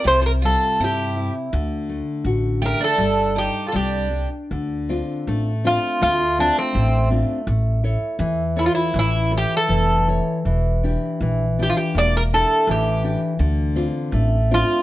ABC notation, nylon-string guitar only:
X:1
M:2/4
L:1/8
Q:1/4=81
K:Cdor
V:1 name="Nylon-string guitar"
C, G, C =E | D, A, ^F A, | G, d G, D | [K:Dm] D, [CDF] A, [CDF] |
A, [CDF] A, [CDF] | A, [EA^c] E, [EAc] | E, [EA^c] E, [EAc] | E, [DEG] E, [DEG] |
B, [DEG] E, [DEG] | D, [CDF] A, [CDF] |]